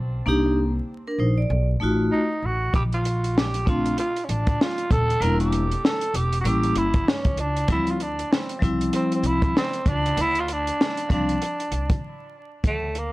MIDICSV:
0, 0, Header, 1, 5, 480
1, 0, Start_track
1, 0, Key_signature, -1, "minor"
1, 0, Tempo, 618557
1, 204, Time_signature, 4, 2, 24, 8
1, 10185, End_track
2, 0, Start_track
2, 0, Title_t, "Tenor saxophone"
2, 0, Program_c, 0, 66
2, 1644, Note_on_c, 0, 63, 83
2, 1907, Note_on_c, 0, 66, 80
2, 1918, Note_off_c, 0, 63, 0
2, 2132, Note_off_c, 0, 66, 0
2, 2137, Note_on_c, 0, 67, 98
2, 2199, Note_off_c, 0, 67, 0
2, 2282, Note_on_c, 0, 65, 80
2, 2622, Note_on_c, 0, 67, 93
2, 2634, Note_off_c, 0, 65, 0
2, 2864, Note_on_c, 0, 65, 92
2, 2876, Note_off_c, 0, 67, 0
2, 3094, Note_off_c, 0, 65, 0
2, 3098, Note_on_c, 0, 65, 103
2, 3292, Note_on_c, 0, 61, 61
2, 3303, Note_off_c, 0, 65, 0
2, 3335, Note_on_c, 0, 62, 90
2, 3347, Note_off_c, 0, 61, 0
2, 3581, Note_on_c, 0, 65, 101
2, 3593, Note_off_c, 0, 62, 0
2, 3816, Note_on_c, 0, 69, 105
2, 3828, Note_off_c, 0, 65, 0
2, 4049, Note_on_c, 0, 70, 116
2, 4061, Note_off_c, 0, 69, 0
2, 4190, Note_off_c, 0, 70, 0
2, 4194, Note_on_c, 0, 67, 84
2, 4536, Note_on_c, 0, 69, 87
2, 4548, Note_off_c, 0, 67, 0
2, 4779, Note_on_c, 0, 67, 96
2, 4791, Note_off_c, 0, 69, 0
2, 4968, Note_off_c, 0, 67, 0
2, 4971, Note_on_c, 0, 66, 72
2, 5022, Note_on_c, 0, 67, 98
2, 5034, Note_off_c, 0, 66, 0
2, 5260, Note_on_c, 0, 64, 90
2, 5271, Note_off_c, 0, 67, 0
2, 5500, Note_on_c, 0, 61, 87
2, 5511, Note_off_c, 0, 64, 0
2, 5745, Note_on_c, 0, 62, 89
2, 5757, Note_off_c, 0, 61, 0
2, 5975, Note_off_c, 0, 62, 0
2, 5991, Note_on_c, 0, 64, 100
2, 6133, Note_on_c, 0, 65, 78
2, 6144, Note_off_c, 0, 64, 0
2, 6221, Note_on_c, 0, 62, 84
2, 6232, Note_off_c, 0, 65, 0
2, 6461, Note_on_c, 0, 60, 69
2, 6472, Note_off_c, 0, 62, 0
2, 6693, Note_off_c, 0, 60, 0
2, 6945, Note_on_c, 0, 60, 89
2, 7069, Note_off_c, 0, 60, 0
2, 7100, Note_on_c, 0, 60, 79
2, 7188, Note_on_c, 0, 64, 92
2, 7200, Note_off_c, 0, 60, 0
2, 7416, Note_off_c, 0, 64, 0
2, 7431, Note_on_c, 0, 60, 102
2, 7676, Note_on_c, 0, 62, 107
2, 7687, Note_off_c, 0, 60, 0
2, 7924, Note_on_c, 0, 64, 126
2, 7936, Note_off_c, 0, 62, 0
2, 8068, Note_on_c, 0, 65, 102
2, 8079, Note_off_c, 0, 64, 0
2, 8168, Note_on_c, 0, 62, 104
2, 8180, Note_off_c, 0, 65, 0
2, 8626, Note_off_c, 0, 62, 0
2, 8639, Note_on_c, 0, 62, 85
2, 9310, Note_off_c, 0, 62, 0
2, 9833, Note_on_c, 0, 57, 93
2, 10079, Note_on_c, 0, 58, 83
2, 10090, Note_off_c, 0, 57, 0
2, 10185, Note_off_c, 0, 58, 0
2, 10185, End_track
3, 0, Start_track
3, 0, Title_t, "Vibraphone"
3, 0, Program_c, 1, 11
3, 201, Note_on_c, 1, 58, 77
3, 206, Note_on_c, 1, 62, 73
3, 214, Note_on_c, 1, 63, 73
3, 220, Note_on_c, 1, 67, 91
3, 445, Note_off_c, 1, 62, 0
3, 449, Note_off_c, 1, 63, 0
3, 452, Note_off_c, 1, 67, 0
3, 557, Note_off_c, 1, 58, 0
3, 834, Note_on_c, 1, 70, 67
3, 836, Note_on_c, 1, 62, 51
3, 923, Note_off_c, 1, 70, 0
3, 924, Note_off_c, 1, 62, 0
3, 927, Note_on_c, 1, 72, 62
3, 929, Note_on_c, 1, 63, 57
3, 1062, Note_off_c, 1, 72, 0
3, 1063, Note_off_c, 1, 63, 0
3, 1068, Note_on_c, 1, 74, 64
3, 1296, Note_off_c, 1, 74, 0
3, 1398, Note_on_c, 1, 57, 72
3, 1404, Note_on_c, 1, 63, 66
3, 1416, Note_on_c, 1, 65, 63
3, 1424, Note_on_c, 1, 66, 81
3, 1698, Note_off_c, 1, 57, 0
3, 1702, Note_off_c, 1, 63, 0
3, 1707, Note_off_c, 1, 65, 0
3, 1711, Note_off_c, 1, 66, 0
3, 2837, Note_on_c, 1, 57, 60
3, 2843, Note_on_c, 1, 60, 57
3, 2851, Note_on_c, 1, 62, 61
3, 2860, Note_on_c, 1, 65, 66
3, 3023, Note_off_c, 1, 57, 0
3, 3025, Note_off_c, 1, 60, 0
3, 3029, Note_off_c, 1, 62, 0
3, 3034, Note_off_c, 1, 65, 0
3, 4037, Note_on_c, 1, 55, 64
3, 4047, Note_on_c, 1, 58, 57
3, 4053, Note_on_c, 1, 62, 51
3, 4064, Note_on_c, 1, 64, 71
3, 4338, Note_off_c, 1, 55, 0
3, 4343, Note_off_c, 1, 58, 0
3, 4346, Note_off_c, 1, 62, 0
3, 4351, Note_off_c, 1, 64, 0
3, 4998, Note_on_c, 1, 55, 57
3, 5008, Note_on_c, 1, 58, 54
3, 5011, Note_on_c, 1, 61, 55
3, 5019, Note_on_c, 1, 64, 63
3, 5298, Note_off_c, 1, 55, 0
3, 5303, Note_off_c, 1, 58, 0
3, 5305, Note_off_c, 1, 61, 0
3, 5309, Note_off_c, 1, 64, 0
3, 5961, Note_on_c, 1, 53, 58
3, 5964, Note_on_c, 1, 55, 54
3, 5977, Note_on_c, 1, 60, 54
3, 5983, Note_on_c, 1, 64, 66
3, 6145, Note_off_c, 1, 53, 0
3, 6146, Note_off_c, 1, 55, 0
3, 6153, Note_off_c, 1, 60, 0
3, 6155, Note_off_c, 1, 64, 0
3, 6669, Note_on_c, 1, 53, 65
3, 6679, Note_on_c, 1, 55, 60
3, 6688, Note_on_c, 1, 60, 64
3, 6697, Note_on_c, 1, 64, 75
3, 7358, Note_off_c, 1, 53, 0
3, 7363, Note_off_c, 1, 55, 0
3, 7368, Note_off_c, 1, 60, 0
3, 7372, Note_off_c, 1, 64, 0
3, 8606, Note_on_c, 1, 53, 61
3, 8613, Note_on_c, 1, 55, 52
3, 8618, Note_on_c, 1, 60, 51
3, 8627, Note_on_c, 1, 62, 67
3, 8787, Note_off_c, 1, 53, 0
3, 8791, Note_off_c, 1, 55, 0
3, 8793, Note_off_c, 1, 60, 0
3, 8798, Note_off_c, 1, 62, 0
3, 10185, End_track
4, 0, Start_track
4, 0, Title_t, "Upright bass"
4, 0, Program_c, 2, 32
4, 0, Note_on_c, 2, 35, 72
4, 167, Note_off_c, 2, 35, 0
4, 204, Note_on_c, 2, 36, 96
4, 611, Note_off_c, 2, 36, 0
4, 919, Note_on_c, 2, 34, 82
4, 1125, Note_off_c, 2, 34, 0
4, 1164, Note_on_c, 2, 35, 100
4, 1368, Note_off_c, 2, 35, 0
4, 1405, Note_on_c, 2, 33, 89
4, 1608, Note_off_c, 2, 33, 0
4, 1881, Note_on_c, 2, 33, 85
4, 2086, Note_off_c, 2, 33, 0
4, 2127, Note_on_c, 2, 34, 83
4, 3054, Note_off_c, 2, 34, 0
4, 3327, Note_on_c, 2, 33, 86
4, 3530, Note_off_c, 2, 33, 0
4, 3804, Note_on_c, 2, 27, 84
4, 4008, Note_off_c, 2, 27, 0
4, 4039, Note_on_c, 2, 28, 89
4, 4448, Note_off_c, 2, 28, 0
4, 4763, Note_on_c, 2, 28, 88
4, 4967, Note_off_c, 2, 28, 0
4, 4999, Note_on_c, 2, 33, 99
4, 5205, Note_off_c, 2, 33, 0
4, 5239, Note_on_c, 2, 31, 73
4, 5445, Note_off_c, 2, 31, 0
4, 5713, Note_on_c, 2, 37, 76
4, 5921, Note_off_c, 2, 37, 0
4, 5964, Note_on_c, 2, 38, 102
4, 6371, Note_off_c, 2, 38, 0
4, 6690, Note_on_c, 2, 36, 83
4, 6891, Note_off_c, 2, 36, 0
4, 7159, Note_on_c, 2, 36, 83
4, 7365, Note_off_c, 2, 36, 0
4, 7647, Note_on_c, 2, 37, 84
4, 7849, Note_off_c, 2, 37, 0
4, 7889, Note_on_c, 2, 38, 92
4, 8294, Note_off_c, 2, 38, 0
4, 8613, Note_on_c, 2, 36, 81
4, 8813, Note_off_c, 2, 36, 0
4, 9089, Note_on_c, 2, 36, 75
4, 9290, Note_off_c, 2, 36, 0
4, 9805, Note_on_c, 2, 38, 79
4, 10185, Note_off_c, 2, 38, 0
4, 10185, End_track
5, 0, Start_track
5, 0, Title_t, "Drums"
5, 2124, Note_on_c, 9, 36, 103
5, 2126, Note_on_c, 9, 42, 83
5, 2202, Note_off_c, 9, 36, 0
5, 2204, Note_off_c, 9, 42, 0
5, 2270, Note_on_c, 9, 42, 45
5, 2348, Note_off_c, 9, 42, 0
5, 2369, Note_on_c, 9, 42, 74
5, 2447, Note_off_c, 9, 42, 0
5, 2516, Note_on_c, 9, 42, 50
5, 2593, Note_off_c, 9, 42, 0
5, 2621, Note_on_c, 9, 38, 101
5, 2698, Note_off_c, 9, 38, 0
5, 2748, Note_on_c, 9, 42, 57
5, 2825, Note_off_c, 9, 42, 0
5, 2848, Note_on_c, 9, 36, 84
5, 2850, Note_on_c, 9, 42, 71
5, 2925, Note_off_c, 9, 36, 0
5, 2928, Note_off_c, 9, 42, 0
5, 2992, Note_on_c, 9, 42, 55
5, 3069, Note_off_c, 9, 42, 0
5, 3087, Note_on_c, 9, 42, 85
5, 3165, Note_off_c, 9, 42, 0
5, 3231, Note_on_c, 9, 42, 51
5, 3308, Note_off_c, 9, 42, 0
5, 3329, Note_on_c, 9, 42, 74
5, 3407, Note_off_c, 9, 42, 0
5, 3467, Note_on_c, 9, 42, 55
5, 3469, Note_on_c, 9, 36, 90
5, 3545, Note_off_c, 9, 42, 0
5, 3547, Note_off_c, 9, 36, 0
5, 3579, Note_on_c, 9, 38, 112
5, 3657, Note_off_c, 9, 38, 0
5, 3709, Note_on_c, 9, 42, 45
5, 3786, Note_off_c, 9, 42, 0
5, 3808, Note_on_c, 9, 36, 85
5, 3810, Note_on_c, 9, 42, 74
5, 3885, Note_off_c, 9, 36, 0
5, 3887, Note_off_c, 9, 42, 0
5, 3959, Note_on_c, 9, 42, 52
5, 4037, Note_off_c, 9, 42, 0
5, 4050, Note_on_c, 9, 42, 87
5, 4128, Note_off_c, 9, 42, 0
5, 4190, Note_on_c, 9, 42, 44
5, 4268, Note_off_c, 9, 42, 0
5, 4287, Note_on_c, 9, 42, 70
5, 4364, Note_off_c, 9, 42, 0
5, 4434, Note_on_c, 9, 42, 49
5, 4512, Note_off_c, 9, 42, 0
5, 4538, Note_on_c, 9, 38, 93
5, 4615, Note_off_c, 9, 38, 0
5, 4665, Note_on_c, 9, 42, 59
5, 4743, Note_off_c, 9, 42, 0
5, 4768, Note_on_c, 9, 42, 86
5, 4845, Note_off_c, 9, 42, 0
5, 4908, Note_on_c, 9, 42, 57
5, 4986, Note_off_c, 9, 42, 0
5, 5007, Note_on_c, 9, 42, 81
5, 5084, Note_off_c, 9, 42, 0
5, 5148, Note_on_c, 9, 42, 51
5, 5226, Note_off_c, 9, 42, 0
5, 5242, Note_on_c, 9, 42, 72
5, 5320, Note_off_c, 9, 42, 0
5, 5383, Note_on_c, 9, 42, 52
5, 5387, Note_on_c, 9, 36, 79
5, 5461, Note_off_c, 9, 42, 0
5, 5464, Note_off_c, 9, 36, 0
5, 5497, Note_on_c, 9, 38, 112
5, 5574, Note_off_c, 9, 38, 0
5, 5623, Note_on_c, 9, 42, 43
5, 5626, Note_on_c, 9, 36, 83
5, 5700, Note_off_c, 9, 42, 0
5, 5704, Note_off_c, 9, 36, 0
5, 5722, Note_on_c, 9, 42, 71
5, 5800, Note_off_c, 9, 42, 0
5, 5870, Note_on_c, 9, 42, 52
5, 5948, Note_off_c, 9, 42, 0
5, 5960, Note_on_c, 9, 42, 89
5, 5963, Note_on_c, 9, 36, 105
5, 6037, Note_off_c, 9, 42, 0
5, 6041, Note_off_c, 9, 36, 0
5, 6105, Note_on_c, 9, 42, 49
5, 6183, Note_off_c, 9, 42, 0
5, 6209, Note_on_c, 9, 42, 66
5, 6286, Note_off_c, 9, 42, 0
5, 6355, Note_on_c, 9, 42, 48
5, 6433, Note_off_c, 9, 42, 0
5, 6461, Note_on_c, 9, 38, 101
5, 6538, Note_off_c, 9, 38, 0
5, 6591, Note_on_c, 9, 42, 57
5, 6669, Note_off_c, 9, 42, 0
5, 6691, Note_on_c, 9, 36, 83
5, 6698, Note_on_c, 9, 42, 80
5, 6769, Note_off_c, 9, 36, 0
5, 6776, Note_off_c, 9, 42, 0
5, 6837, Note_on_c, 9, 42, 56
5, 6914, Note_off_c, 9, 42, 0
5, 6930, Note_on_c, 9, 42, 92
5, 7007, Note_off_c, 9, 42, 0
5, 7075, Note_on_c, 9, 42, 48
5, 7153, Note_off_c, 9, 42, 0
5, 7166, Note_on_c, 9, 42, 68
5, 7243, Note_off_c, 9, 42, 0
5, 7310, Note_on_c, 9, 36, 94
5, 7310, Note_on_c, 9, 42, 55
5, 7387, Note_off_c, 9, 42, 0
5, 7388, Note_off_c, 9, 36, 0
5, 7424, Note_on_c, 9, 38, 121
5, 7501, Note_off_c, 9, 38, 0
5, 7553, Note_on_c, 9, 42, 49
5, 7630, Note_off_c, 9, 42, 0
5, 7650, Note_on_c, 9, 36, 83
5, 7650, Note_on_c, 9, 42, 73
5, 7727, Note_off_c, 9, 36, 0
5, 7728, Note_off_c, 9, 42, 0
5, 7804, Note_on_c, 9, 42, 53
5, 7882, Note_off_c, 9, 42, 0
5, 7895, Note_on_c, 9, 42, 91
5, 7973, Note_off_c, 9, 42, 0
5, 8034, Note_on_c, 9, 42, 45
5, 8111, Note_off_c, 9, 42, 0
5, 8136, Note_on_c, 9, 42, 75
5, 8213, Note_off_c, 9, 42, 0
5, 8282, Note_on_c, 9, 42, 51
5, 8359, Note_off_c, 9, 42, 0
5, 8388, Note_on_c, 9, 38, 101
5, 8466, Note_off_c, 9, 38, 0
5, 8515, Note_on_c, 9, 42, 59
5, 8593, Note_off_c, 9, 42, 0
5, 8613, Note_on_c, 9, 36, 82
5, 8617, Note_on_c, 9, 42, 75
5, 8691, Note_off_c, 9, 36, 0
5, 8694, Note_off_c, 9, 42, 0
5, 8759, Note_on_c, 9, 42, 56
5, 8837, Note_off_c, 9, 42, 0
5, 8859, Note_on_c, 9, 42, 81
5, 8937, Note_off_c, 9, 42, 0
5, 9001, Note_on_c, 9, 42, 48
5, 9078, Note_off_c, 9, 42, 0
5, 9093, Note_on_c, 9, 42, 77
5, 9170, Note_off_c, 9, 42, 0
5, 9232, Note_on_c, 9, 36, 88
5, 9232, Note_on_c, 9, 42, 51
5, 9309, Note_off_c, 9, 42, 0
5, 9310, Note_off_c, 9, 36, 0
5, 9808, Note_on_c, 9, 36, 101
5, 9810, Note_on_c, 9, 42, 83
5, 9885, Note_off_c, 9, 36, 0
5, 9888, Note_off_c, 9, 42, 0
5, 10049, Note_on_c, 9, 42, 70
5, 10127, Note_off_c, 9, 42, 0
5, 10185, End_track
0, 0, End_of_file